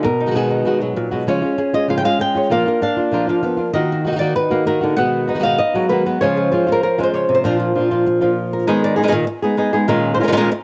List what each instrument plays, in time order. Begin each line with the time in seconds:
0.03 nylon-string guitar B2 A#4, muted nylon-string guitar stroke
0.20 nylon-string guitar D#4
0.26 nylon-string guitar D#3 G#3 B3 F#4
0.31 nylon-string guitar D#3 G#3 B3 F#4
0.35 nylon-string guitar B2 D#3 G#3 B3 F#4 G#4
0.50 nylon-string guitar D#4
0.65 nylon-string guitar B2 D#3 G#3 B3 F#4
0.80 nylon-string guitar F#3 G#3 B3 F#4
0.96 nylon-string guitar A#2, muted nylon-string guitar stroke
1.11 nylon-string guitar B2 G#3 B3 F#4
1.27 nylon-string guitar C#3 F3 G#3 C#4 F4 C#5
1.42 nylon-string guitar G#3 C#4 F4
1.58 nylon-string guitar G#4, muted nylon-string guitar stroke
1.73 nylon-string guitar G#3 C#4 F4 D#5
1.88 nylon-string guitar C#3 F3 G#3 C#4 F4 F5
1.97 nylon-string guitar G5
2.03 nylon-string guitar G#3 C#4 F4 F5
2.19 nylon-string guitar G5, muted nylon-string guitar stroke
2.35 nylon-string guitar G#3 C#4 F4 C#5
2.50 nylon-string guitar A#2 F3 A#3 D4 F4 F5
2.66 nylon-string guitar A#3 D4 F4 A#4
2.81 nylon-string guitar D4 F5, muted nylon-string guitar stroke
2.97 nylon-string guitar A#3 D4 F4
3.12 nylon-string guitar A#2 F3 A#3 D4 F4 A#4
3.27 nylon-string guitar F3 A#3 D4 F4 F5
3.43 nylon-string guitar B3, muted nylon-string guitar stroke
3.57 nylon-string guitar A#3 D4 F4
3.73 nylon-string guitar D#3 A#3 D#4 F#4 D#5
3.92 nylon-string guitar F#4
4.05 nylon-string guitar D#3 A#3 D#4 F#4
4.11 nylon-string guitar D#3 A#3 D#4 F#4
4.16 nylon-string guitar D#3 A#3 D#4 F#4 D5
4.20 nylon-string guitar D#3 A#3 D#4 F#4
4.36 nylon-string guitar B4, muted nylon-string guitar stroke
4.50 nylon-string guitar A#3 D#4 F#4
4.65 nylon-string guitar D#3 A#3 D#4 F#4 A#4
4.81 nylon-string guitar D3 A#3 D#4 F#4
4.97 nylon-string guitar B2 D#3 G#3 B3 F#4 F#5
5.28 nylon-string guitar G#3 B3 D#4 F#4
5.35 nylon-string guitar D#3 G#3 B3 F#4
5.39 nylon-string guitar D#3 G#3 B3 F#4 F5
5.44 nylon-string guitar B2 D#3 G#3 B3 F#4
5.58 nylon-string guitar D#5, muted nylon-string guitar stroke
5.74 nylon-string guitar F#3 G#3 B3 F#4
5.89 nylon-string guitar D#3 G#3 A#3 B3 F#4 B4
6.06 nylon-string guitar G#3 B3 F#4
6.21 nylon-string guitar C#3 F3 G#3 C#4 F4 G#4 C#5
6.37 nylon-string guitar G#4
6.51 nylon-string guitar F3 G#3 C#4 F4
6.67 nylon-string guitar G#3 C#4 F4
6.72 nylon-string guitar A#4
6.83 nylon-string guitar A#4, muted nylon-string guitar stroke
6.98 nylon-string guitar G#3 C#4 F4
7.03 nylon-string guitar C5
7.13 nylon-string guitar C#3 C#5
7.29 nylon-string guitar C3
7.34 nylon-string guitar C5
7.44 nylon-string guitar A#2 F3 A#3 D4 F4 A#4
7.60 nylon-string guitar F4
7.75 nylon-string guitar F3 A#3 D4 F4
7.91 nylon-string guitar A#3 D4 F4
8.06 muted nylon-string guitar stroke
8.21 nylon-string guitar F3 A#3 D4 F4
8.53 nylon-string guitar A#4
8.67 nylon-string guitar D#3 G#3 B3 D#4 G#4
8.84 nylon-string guitar D5
8.96 nylon-string guitar G#3 B3 D#4 G#4
9.03 nylon-string guitar D#3 G#3 B3 D#4 G#4
9.08 nylon-string guitar D#3 G#3 B3 D#4 G#4
9.12 nylon-string guitar A#2 D#3
9.27 muted nylon-string guitar stroke
9.42 nylon-string guitar G#3 B3 D#4 G#4
9.57 nylon-string guitar G#3 B3 D#4 G#4
9.73 nylon-string guitar G#3 B3 D#4 G#4
9.88 nylon-string guitar A#2 D#3 G#3 C#4 F4 A#4
10.14 nylon-string guitar C5
10.20 nylon-string guitar D#3 G#3 C#4 F4 A#4
10.24 nylon-string guitar D#3 G#3 F4 A#4
10.28 nylon-string guitar D#3 G#3 C#4 A#4
10.33 nylon-string guitar A#2 G#3 F4 A#4
10.37 nylon-string guitar D#3 C#4 F4 A#4
10.51 muted nylon-string guitar stroke